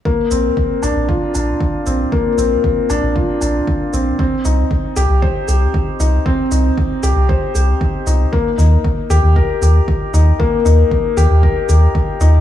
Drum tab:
SH |-x-x-x-x|-x-x-x-x|-x-x-x-x|-x-x-x-x|
BD |o-o-o-o-|o-o-o-o-|o-o-o-o-|o-o-o-o-|

SH |-x-x-x-x|-x-x-x-x|
BD |o-o-o-o-|o-o-o-o-|